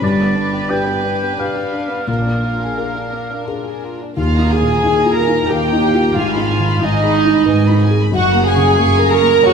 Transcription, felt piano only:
0.02 0.68 G2 soft
0.69 1.34 D4 soft
0.69 1.34 G4 soft
0.69 1.34 B4 soft
1.38 2.04 D4 soft
1.38 2.04 G4 soft
1.38 2.04 B4 soft
2.07 2.76 A#2 soft
2.77 3.44 D4 soft
2.77 3.44 G#4 soft
2.77 3.44 A#4 soft
3.47 4.13 D4 soft
3.47 4.13 G#4 soft
3.47 4.13 A#4 soft
4.17 6.11 D#2 soft
4.39 4.74 D#4 soft
4.62 4.97 A#2 soft
4.84 5.19 D#4 soft
5.05 5.40 F4 soft
5.27 5.63 D#4 soft
5.50 5.85 A#4 soft
5.72 6.07 D#4 soft
5.94 6.16 F4 soft
6.16 8.10 G#2 soft
6.37 6.73 D#4 soft
6.60 6.95 D#3 soft
6.81 7.17 D#4 soft
7.03 7.39 G#4 soft
7.25 7.61 D#4 soft
7.46 7.82 B4 soft
7.69 8.05 D#4 soft
7.91 8.13 G#4 soft
8.11 9.53 F#2 soft
8.34 8.70 A#3 soft
8.56 8.91 C#3 soft
8.78 9.13 A#3 soft
8.99 9.35 A#4 soft
9.21 9.53 A#3 soft
9.43 9.53 C#5 soft

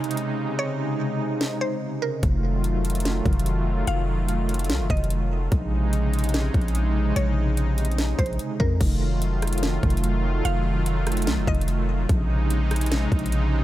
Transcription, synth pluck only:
0.59 1.57 C#5 medium
1.61 2.00 C5 medium
2.02 2.22 A#4 medium
3.88 4.86 F5 loud
4.90 5.10 D#5 medium
7.16 8.15 C#5 medium
8.19 8.57 C5 medium
8.60 8.79 A#4 medium
10.45 11.44 F5 loud
11.48 11.67 D#5 medium

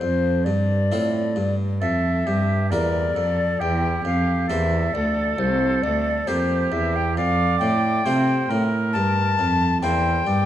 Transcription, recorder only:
0.00 0.46 C5 medium
0.45 1.55 D5 medium
1.81 2.69 E5 medium
2.70 3.62 D5 medium
3.61 4.05 G5 medium
4.06 4.51 F5 medium
4.50 4.95 E5 medium
4.94 5.41 D5 medium
5.39 5.84 C5 medium
5.83 6.29 D5 medium
6.27 6.74 C5 medium
6.72 6.98 E5 medium
6.96 7.16 G5 medium
7.17 7.59 F5 medium
7.59 8.63 G5 medium
8.93 9.78 A5 medium
9.82 10.46 G5 medium

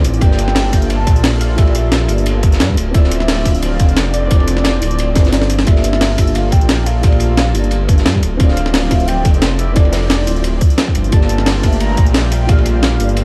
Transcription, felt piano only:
0.00 0.24 C4 loud
0.00 0.24 E4 medium
0.00 0.20 F4 medium
0.00 0.23 A4 medium
0.00 0.24 D5 loud
0.00 0.24 E5 medium
0.18 0.68 A#3 loud
0.18 0.70 F4 medium
0.18 0.71 G4 medium
0.23 0.72 A4 medium
0.23 0.72 D5 loud
0.69 1.53 A#3 medium
0.69 1.55 F4 medium
0.69 1.56 G4 medium
0.74 1.57 A4 medium
0.74 1.58 E5 medium
1.55 2.04 A#3 loud
1.55 2.06 F4 medium
1.55 2.07 G4 medium
1.60 2.08 A4 medium
1.60 2.09 D5 loud
2.06 2.75 A#3 medium
2.06 2.76 F4 medium
2.06 2.76 G4 medium
2.11 2.77 A4 medium
2.11 2.78 D5 medium
2.91 3.41 C4 loud
2.91 3.43 E4 medium
2.91 3.43 F4 medium
2.96 3.44 A4 medium
2.96 3.45 D5 loud
3.42 4.26 C4 medium
3.42 4.28 D4 medium
3.42 4.29 F4 medium
3.47 4.30 A4 medium
3.47 4.30 F5 medium
4.28 4.77 C4 loud
4.28 4.79 E4 medium
4.28 4.80 F4 medium
4.33 4.81 A4 medium
4.33 4.82 D5 loud
4.79 5.20 C4 medium
4.79 5.22 E4 medium
4.79 5.23 F4 medium
4.83 5.24 A4 medium
4.83 5.25 D5 medium
5.22 5.64 C4 loud
5.22 5.64 E4 medium
5.22 5.64 F4 medium
5.27 5.66 A4 medium
5.27 5.67 D5 loud
5.64 6.13 A#3 loud
5.64 6.15 F4 medium
5.64 6.16 G4 medium
5.69 6.17 A4 medium
5.69 6.18 D5 loud
6.15 6.99 A#3 medium
6.15 7.01 F4 medium
6.15 7.02 G4 medium
6.20 7.02 A4 medium
6.20 7.03 E5 medium
7.00 7.50 A#3 loud
7.00 7.52 F4 medium
7.00 7.53 G4 medium
7.05 7.54 A4 medium
7.05 7.54 D5 loud
7.52 8.20 A#3 medium
7.52 8.21 F4 medium
7.52 8.22 G4 medium
7.57 8.23 A4 medium
7.57 8.24 D5 medium
8.37 8.86 C4 loud
8.37 8.88 D4 medium
8.37 8.89 F4 medium
8.42 8.90 A4 medium
8.42 8.91 D5 loud
8.88 9.71 C4 medium
8.88 9.73 E4 medium
8.88 9.74 F4 medium
8.93 9.75 A4 medium
8.93 9.76 E5 medium
9.73 10.22 C4 loud
9.73 10.24 E4 medium
9.73 10.25 F4 medium
9.78 10.26 A4 medium
9.78 10.27 D5 loud
10.24 11.09 C4 medium
10.24 11.10 E4 medium
10.24 11.09 F4 medium
10.29 11.11 A4 medium
10.29 11.12 D5 medium
11.09 11.59 A#3 loud
11.09 11.60 F4 medium
11.09 11.62 G4 medium
11.14 11.63 A4 medium
11.14 11.63 D5 loud
11.60 12.44 A#3 medium
11.60 12.45 F4 medium
11.60 12.47 G4 medium
11.65 12.48 A3 medium
11.65 12.49 E5 medium
12.45 12.95 A#3 loud
12.45 12.97 F4 medium
12.45 12.98 G4 medium
12.50 12.99 A4 medium
12.50 13.00 D5 loud
12.97 13.24 A#3 medium
12.97 13.24 F4 medium
12.97 13.24 G4 medium
13.02 13.24 A4 medium
13.02 13.24 D5 medium

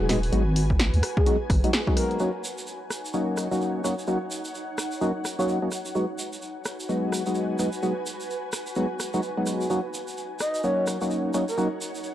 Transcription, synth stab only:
0.09 0.19 F#3 medium
0.09 0.19 G#3 medium
0.09 0.19 B3 medium
0.09 0.19 D#4 medium
0.09 0.19 F#4 medium
0.33 0.43 F#3 medium
0.33 0.43 G#3 medium
0.33 0.43 B3 medium
0.33 0.43 D#4 medium
0.33 0.43 F#4 loud
1.26 1.37 F#3 loud
1.26 1.37 G#3 medium
1.26 1.37 B3 medium
1.26 1.37 D#4 medium
1.26 1.37 F#4 loud
1.64 1.71 F#3 medium
1.64 1.71 G#3 medium
1.64 1.71 B3 medium
1.64 1.71 D#4 medium
1.64 1.71 F#4 loud
1.87 2.18 F#3 medium
1.87 2.18 G#3 medium
1.87 2.18 B3 medium
1.87 2.18 D#4 medium
1.87 2.18 F#4 medium
2.20 2.30 F#3 medium
2.20 2.30 A#3 medium
2.20 2.30 C#4 medium
2.20 2.30 D#4 medium
2.20 2.30 F#4 medium
3.14 3.48 F#3 medium
3.14 3.48 A#3 medium
3.14 3.48 C#4 medium
3.14 3.48 D#4 medium
3.14 3.48 F#4 medium
3.51 3.82 F#3 medium
3.51 3.82 A#3 medium
3.51 3.82 C#4 medium
3.51 3.82 D#4 medium
3.51 3.82 F#4 medium
3.84 3.94 F#3 medium
3.84 3.94 A#3 medium
3.84 3.94 C#4 medium
3.84 3.94 D#4 medium
3.84 3.94 F#4 medium
4.08 4.18 F#3 medium
4.08 4.18 A#3 medium
4.08 4.18 C#4 medium
4.08 4.18 D#4 medium
4.08 4.18 F#4 loud
5.01 5.12 F#3 medium
5.01 5.12 A#3 medium
5.01 5.12 C#4 medium
5.01 5.12 D#4 medium
5.01 5.12 F#4 loud
5.39 5.59 F#3 medium
5.39 5.59 A#3 medium
5.39 5.59 C#4 medium
5.39 5.59 D#4 medium
5.39 5.59 F#4 loud
5.62 5.69 F#3 medium
5.62 5.69 A#3 medium
5.62 5.69 C#4 medium
5.62 5.69 D#4 medium
5.62 5.69 F#4 medium
5.95 6.05 F#3 medium
5.95 6.05 G#3 medium
5.95 6.05 B3 medium
5.95 6.05 D#4 medium
5.95 6.05 F#4 medium
6.89 7.23 F#3 medium
6.89 7.23 G#3 medium
6.89 7.23 B3 medium
6.89 7.23 D#4 medium
6.89 7.23 F#4 medium
7.26 7.57 F#3 medium
7.26 7.57 G#3 medium
7.26 7.57 B3 medium
7.26 7.57 D#4 medium
7.26 7.57 F#4 medium
7.59 7.69 F#3 medium
7.59 7.69 G#3 medium
7.59 7.69 B3 medium
7.59 7.69 D#4 medium
7.59 7.69 F#4 medium
7.83 7.93 F#3 medium
7.83 7.93 G#3 medium
7.83 7.93 B3 medium
7.83 7.93 D#4 medium
7.83 7.93 F#4 loud
8.76 8.87 F#3 medium
8.76 8.87 G#3 medium
8.76 8.87 B3 medium
8.76 8.87 D#4 medium
8.76 8.87 F#4 loud
9.14 9.21 F#3 medium
9.14 9.21 G#3 medium
9.14 9.21 B3 medium
9.14 9.21 D#4 medium
9.14 9.21 F#4 loud
9.37 9.68 F#3 medium
9.37 9.68 G#3 medium
9.37 9.68 B3 medium
9.37 9.68 D#4 medium
9.37 9.68 F#4 medium
9.70 9.80 F#3 medium
9.70 9.80 A#3 medium
9.70 9.80 C#4 medium
9.70 9.80 D#4 medium
9.70 9.80 F#4 medium
10.64 10.98 F#3 medium
10.64 10.98 A#3 medium
10.64 10.98 C#4 medium
10.64 10.98 D#4 medium
10.64 10.98 F#4 medium
11.01 11.32 F#3 medium
11.01 11.32 A#3 medium
11.01 11.32 C#4 medium
11.01 11.32 D#4 medium
11.01 11.32 F#4 medium
11.34 11.44 F#3 medium
11.34 11.44 A#3 medium
11.34 11.44 C#4 medium
11.34 11.44 D#4 medium
11.34 11.44 F#4 medium
11.58 11.68 F#3 medium
11.58 11.68 A#3 medium
11.58 11.68 C#4 medium
11.58 11.68 D#4 medium
11.58 11.68 F#4 loud

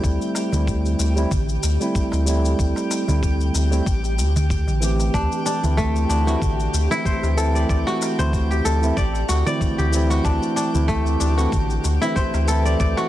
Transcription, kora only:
5.14 5.45 D4 medium
5.46 6.09 D4 medium
5.77 7.77 A3 medium
6.09 7.77 D4 medium
6.27 7.73 F#4 medium
6.91 8.48 E4 medium
7.06 8.18 C5 medium
7.37 8.65 A4 medium
7.55 7.69 D5 medium
7.69 8.80 D5 medium
7.87 8.57 F#4 loud
8.19 9.38 C5 medium
8.51 9.35 G4 medium
8.65 9.97 A4 medium
8.97 9.46 D5 medium
9.29 9.84 F#4 medium
9.46 10.57 D5 medium
9.78 10.16 G4 medium
10.10 11.37 F#4 medium
10.25 10.56 D4 medium
10.56 11.20 D4 medium
10.88 12.88 A3 loud
11.20 12.88 D4 medium
11.38 12.84 F#4 medium
12.02 13.09 E4 medium
12.16 13.09 C5 medium
12.48 13.09 A4 medium
12.65 12.79 D5 medium
12.80 13.09 D5 medium
12.97 13.09 F#4 medium

